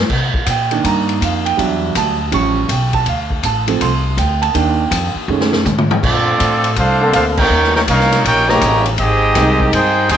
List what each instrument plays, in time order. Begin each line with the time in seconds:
0.09 upright bass C3, kick, crash
0.34 muted upright bass stroke, kick
0.45 upright bass A#2, grand piano F#5, hi-hat pedal, ride
0.50 grand piano G5
0.71 grand piano D#3 A#3 D4, ride
0.84 upright bass G2, grand piano A#5, kick, ride
1.09 ride
1.21 upright bass F2, grand piano F5, kick, hi-hat pedal, ride
1.45 grand piano G5, ride
1.57 upright bass E2, grand piano F#3 G3 D4 E5, kick, ride
1.95 upright bass D2, grand piano A5, kick, hi-hat pedal, ride
2.31 upright bass A1, grand piano F3 G3 C#4 C#6, kick, ride
2.69 upright bass B1, grand piano G5, kick, hi-hat pedal, ride
2.93 grand piano A5, kick, ride
3.06 upright bass D2, grand piano F5, kick, ride
3.30 kick
3.43 upright bass A1, grand piano A5, kick, hi-hat pedal, ride
3.67 grand piano F3 A3 C4, ride
3.81 upright bass C2, grand piano C6, kick, ride
4.17 upright bass D2, grand piano G5, kick, hi-hat pedal, ride
4.42 grand piano A5, ride
4.54 upright bass D#2, grand piano D#3 A#3 D4 G5, kick, ride
4.91 upright bass F2, kick, hi-hat pedal, ride
5.15 muted upright bass stroke
5.28 upright bass F#2, grand piano D#3 G#3 A3 C#4
5.41 snare
5.53 snare
5.65 upright bass G#2, hi-hat pedal, mid tom
5.78 mid tom
5.91 floor tom
6.02 upright bass A#2, trombone section F3 A3 D4, trumpet section C4 F4 A4 D5, kick, crash
6.40 upright bass A2, kick, hi-hat pedal, ride
6.64 ride
6.76 upright bass C2, trombone section A3 D4 F4, trumpet section D4 A4 C5 F5, kick, ride
7.01 trombone section D3 A#3 C4 A4
7.12 upright bass D2, trombone section A3 D4 F4, trumpet section D4 A4 C5 F5, kick, hi-hat pedal, ride
7.36 trombone section A#3 C#4 G4, trumpet section D#4 A#4 C#5 G5, kick, crash
7.49 upright bass D#2
7.64 snare
7.74 trombone section A#3 C#4 G4, trumpet section D#4 A#4 C#5 G5, snare
7.87 upright bass C2, trombone section A#3 C#4 F4, trumpet section D#4 A#4 C#5 F5, kick, hi-hat pedal, ride
8.00 snare
8.12 snare, ride
8.23 upright bass A#1, trombone section A#3 C#4 G4, trumpet section D#4 A#4 C#5 G5, kick, ride
8.47 trombone section C#3 D#3 G3 A#3 C#4 G4, trumpet section G4 C#5 D#5 A#5, snare
8.61 upright bass A1, kick, hi-hat pedal, ride
8.86 ride
8.98 upright bass G#1, trombone section G#3 C4 D#4, trumpet section C4 G4 G#4 D#5, kick, ride
9.33 upright bass C2, trombone section D#3 G#3 C4 D#4, kick, snare, hi-hat pedal, ride
9.60 kick
9.72 upright bass G2, trombone section C4 D#4 G#4, trumpet section D#4 G#4 C5 G5, ride
10.09 upright bass D#2, trombone section C4 D#4 G4, trumpet section D#4 G#4 C5 G5, kick, hi-hat pedal, ride